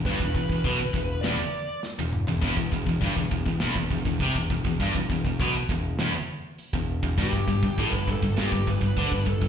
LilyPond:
<<
  \new Staff \with { instrumentName = "Lead electric guitar" } { \time 4/4 \key e \minor \tempo 4 = 101 b'2 d''4 r4 | r1 | r1 | g'4 b'8 a'8 g'8 b'4 a'8 | }
  \new Staff \with { instrumentName = "Distorted electric guitar" } { \clef bass \time 4/4 \key e \minor g,16 e,16 e,16 e,16 b,16 r16 e,8 e,16 r4 e,8 e,16 | e,16 e,16 e,16 e,16 g,16 e,16 e,16 e,16 e,16 e,16 e,16 e,16 c16 e,16 e,16 e,16 | g,16 e,16 e,16 e,16 b,16 r16 e,8 e,16 r4 e,8 e,16 | g,16 g,16 g,16 g,16 a,16 g,16 g,16 g,16 g,16 g,16 g,16 g,16 d16 g,16 g,16 g,16 | }
  \new Staff \with { instrumentName = "Distorted electric guitar" } { \clef bass \time 4/4 \key e \minor g,16 e,16 e,16 e,16 b,16 r16 e,8 e,16 r4 e,8 e,16 | e,16 e,16 e,16 e,16 g,16 e,16 e,16 e,16 e,16 e,16 e,16 e,16 c16 e,16 e,16 e,16 | g,16 e,16 e,16 e,16 b,16 r16 e,8 e,16 r4 e,8 e,16 | g,16 g,16 g,16 g,16 a,16 g,16 g,16 g,16 g,16 g,16 g,16 g,16 d16 g,16 g,16 g,16 | }
  \new Staff \with { instrumentName = "Picked electric bass" } { \clef bass \time 4/4 \key e \minor g,,16 e,,16 e,,16 e,,16 b,,16 r16 e,,8 e,,16 r4 e,,8 e,,16 | e,,16 e,,16 e,,16 e,,16 g,,16 e,,16 e,,16 e,,16 e,,16 e,,16 e,,16 e,,16 c,16 e,,16 e,,16 e,,16 | g,,16 e,,16 e,,16 e,,16 b,,16 r16 e,,8 e,,16 r4 e,,8 e,,16 | g,,16 g,,16 g,,16 g,,16 a,,16 g,,16 g,,16 g,,16 g,,16 g,,16 g,,16 g,,16 d,16 g,,16 g,,16 g,,16 | }
  \new DrumStaff \with { instrumentName = "Drums" } \drummode { \time 4/4 <hho bd>16 bd16 bd16 bd16 <hho bd>8 bd8 <hho sn>4 sn8 toml16 tomfh16 | <hho bd>16 bd16 bd16 bd16 <hho bd>16 bd16 bd16 bd16 <hho sn>16 bd16 bd16 bd16 <hho bd>16 bd16 bd16 bd16 | <hho bd>16 bd16 bd16 bd16 <hho bd>8 bd8 <hho sn>4 hho16 bd8 bd16 | <hho bd>16 bd16 bd16 bd16 <hho bd>16 bd16 bd16 bd16 <hho sn>16 bd16 bd16 bd16 <hho bd>16 bd16 bd16 bd16 | }
>>